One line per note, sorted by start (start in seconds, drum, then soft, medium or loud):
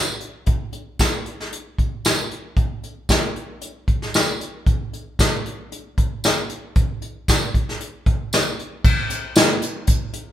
0.20 closed hi-hat soft
0.46 kick medium
0.46 closed hi-hat medium
0.73 closed hi-hat medium
0.99 kick medium
0.99 snare loud
0.99 closed hi-hat medium
0.99 tambourine loud
1.26 closed hi-hat medium
1.40 snare soft
1.52 closed hi-hat medium
1.79 kick medium
1.79 closed hi-hat medium
2.05 snare loud
2.05 closed hi-hat medium
2.05 tambourine loud
2.31 closed hi-hat medium
2.57 kick medium
2.57 closed hi-hat medium
2.83 closed hi-hat medium
3.09 kick medium
3.09 snare loud
3.09 closed hi-hat medium
3.09 tambourine loud
3.36 closed hi-hat soft
3.61 closed hi-hat medium
3.88 kick medium
3.88 closed hi-hat medium
4.02 snare soft
4.14 snare medium
4.14 closed hi-hat medium
4.14 tambourine medium
4.41 closed hi-hat medium
4.67 kick medium
4.67 closed hi-hat medium
4.93 closed hi-hat medium
5.19 kick medium
5.19 snare loud
5.19 closed hi-hat medium
5.19 tambourine medium
5.46 closed hi-hat medium
5.72 closed hi-hat medium
5.98 kick medium
5.98 closed hi-hat medium
6.24 snare loud
6.24 closed hi-hat medium
6.24 tambourine loud
6.49 closed hi-hat medium
6.76 kick medium
6.76 closed hi-hat medium
7.02 closed hi-hat medium
7.28 kick medium
7.28 snare loud
7.28 closed hi-hat medium
7.28 tambourine medium
7.54 kick medium
7.54 closed hi-hat medium
7.69 snare soft
7.80 closed hi-hat medium
8.06 kick medium
8.06 closed hi-hat medium
8.33 snare loud
8.33 closed hi-hat medium
8.33 tambourine loud
8.59 closed hi-hat medium
8.84 kick loud
8.84 crash loud
8.84 tambourine soft
9.10 closed hi-hat medium
9.10 tambourine medium
9.36 snare loud
9.36 closed hi-hat loud
9.36 tambourine loud
9.37 tambourine medium
9.62 closed hi-hat medium
9.62 tambourine medium
9.87 kick medium
9.87 closed hi-hat loud
9.87 tambourine medium
10.13 closed hi-hat medium